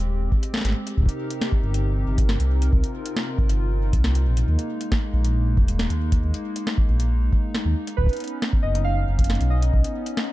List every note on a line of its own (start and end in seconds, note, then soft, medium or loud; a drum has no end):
0.00 0.29 D#1 medium
0.00 0.94 G#3 medium
0.00 4.44 C4 medium
0.00 0.94 G4 medium
0.32 kick loud
0.43 closed hi-hat medium
0.54 snare loud
0.57 snare medium
0.61 0.74 G#1 medium
0.61 snare medium
0.65 snare medium
0.65 closed hi-hat medium
0.69 snare medium
0.72 snare soft
0.87 closed hi-hat medium
0.97 1.07 C2 loud
0.97 4.44 C3 medium
0.97 10.32 D#4 medium
0.97 2.71 G4 medium
0.97 4.44 A#4 medium
0.97 kick medium
1.00 kick medium
1.03 kick medium
1.06 kick loud
1.06 closed hi-hat medium
1.30 closed hi-hat medium
1.41 snare loud
1.52 kick loud
1.63 2.04 G1 medium
1.74 closed hi-hat medium
2.07 2.37 G1 medium
2.18 kick loud
2.18 closed hi-hat medium
2.29 snare loud
2.40 2.70 C2 loud
2.40 closed hi-hat medium
2.62 closed hi-hat medium
2.73 2.82 C2 loud
2.73 4.46 F4 medium
2.73 kick loud
2.84 closed hi-hat medium
3.06 closed hi-hat medium
3.16 snare loud
3.38 3.95 G1 medium
3.38 kick loud
3.49 closed hi-hat medium
3.93 4.27 C2 medium
3.93 kick loud
3.93 closed hi-hat medium
4.04 snare loud
4.15 closed hi-hat medium
4.26 4.44 A#1 medium
4.37 closed hi-hat medium
4.48 4.57 D#2 loud
4.48 7.95 G#3 medium
4.48 7.95 A#3 medium
4.59 closed hi-hat soft
4.81 closed hi-hat medium
4.92 kick loud
4.92 snare loud
5.14 5.59 A#1 medium
5.25 closed hi-hat medium
5.57 5.88 D#1 medium
5.57 kick loud
5.68 closed hi-hat medium
5.79 snare loud
5.90 6.20 D#2 loud
5.90 closed hi-hat soft
6.12 kick loud
6.12 closed hi-hat medium
6.23 6.32 D#2 loud
6.34 closed hi-hat soft
6.56 closed hi-hat medium
6.67 snare loud
6.78 kick loud
6.89 7.30 A#1 medium
7.00 closed hi-hat medium
7.33 kick loud
7.55 snare loud
7.65 7.75 D#2 medium
7.87 closed hi-hat medium
7.97 8.08 B1 loud
7.97 10.32 B3 medium
7.97 10.32 C#4 medium
7.97 8.38 B4 loud
7.97 kick medium
8.01 kick medium
8.04 kick medium
8.06 kick loud
8.06 closed hi-hat soft
8.13 closed hi-hat soft
8.17 closed hi-hat soft
8.20 closed hi-hat soft
8.24 closed hi-hat soft
8.28 closed hi-hat soft
8.42 snare loud
8.53 kick loud
8.63 9.05 F#1 medium
8.63 8.86 D#5 loud
8.75 closed hi-hat medium
8.84 9.53 F5 loud
9.08 9.38 F#1 medium
9.19 kick loud
9.19 closed hi-hat medium
9.24 closed hi-hat medium
9.30 snare loud
9.30 closed hi-hat soft
9.35 closed hi-hat soft
9.41 9.71 B1 loud
9.41 closed hi-hat medium
9.50 10.32 D#5 medium
9.62 closed hi-hat medium
9.74 9.83 B1 loud
9.74 kick loud
9.84 closed hi-hat medium
10.06 closed hi-hat medium
10.17 snare loud